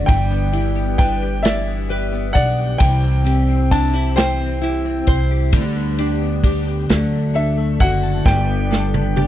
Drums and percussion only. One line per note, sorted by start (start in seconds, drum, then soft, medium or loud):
0.08 kick loud
0.08 ride medium
0.53 ride soft
0.99 kick medium
0.99 ride medium
1.45 snare loud
1.45 ride medium
1.91 ride soft
2.35 kick medium
2.35 ride medium
2.80 kick loud
2.80 ride medium
3.26 ride soft
3.71 kick medium
3.71 ride medium
4.17 snare loud
4.17 ride medium
4.64 ride soft
5.07 kick medium
5.07 ride soft
5.53 kick loud
5.53 ride medium
5.98 ride soft
6.44 kick medium
6.44 ride medium
6.90 snare loud
6.90 ride medium
7.36 ride soft
7.80 kick medium
7.80 ride medium
8.26 kick loud
8.26 snare medium
8.72 snare medium
8.94 high tom medium
9.17 high tom medium